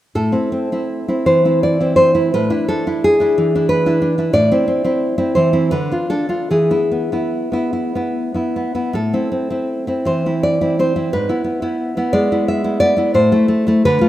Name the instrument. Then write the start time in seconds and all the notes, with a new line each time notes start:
nylon-string guitar
0.15 A2 A4
0.32 C4 E4
0.52 C4
0.72 C4 E4
1.08 C4 E4
1.26 E3 C5
1.45 C4 E4
1.63 D5
1.80 C4 E4
1.96 C4 C5
2.15 C4 E4
2.34 A2 B4
2.50 D4 E4
2.68 D4 A4
2.87 D4 E4
3.04 G#4
3.20 D4 E4
3.38 E3
3.55 D4 E4
3.69 B4
3.86 D4 E4
4.02 D4
4.18 D4 E4
4.33 A2 D5
4.52 C4 E4
4.68 C4
4.84 C4 E4
5.18 C4 E4
5.35 E3 C5
5.53 C4 E4
5.71 D3 B4
5.91 D4 F4
6.10 D4 A4
6.29 D4 F4
6.51 E3 G#4
6.70 B3 E4
6.92 B3
7.12 B3 E4
7.52 B3 E4
7.73 E4
7.95 B3 E4
8.34 B3 E4
8.56 B3
8.75 B3 E4
8.93 A2 A4
9.13 C4 E4
9.32 C4
9.50 C4 E4
9.87 C4 E4
10.05 E3 C5
10.26 C4 E4
10.43 D5
10.61 C4 E4
10.79 C4 C5
10.96 C4 E4
11.13 G#2 B4
11.29 B3 E4
11.44 B3
11.62 B3 E4
11.97 B3 E4
12.13 G#3 D5
12.32 B3 E4
12.48 E5
12.64 B3 E4
12.80 B3 D5
12.97 B3 E4
13.14 A2 C5
13.32 A3 E4
13.48 A3
13.67 A3 E4
13.85 D3 B4
14.01 A3 F4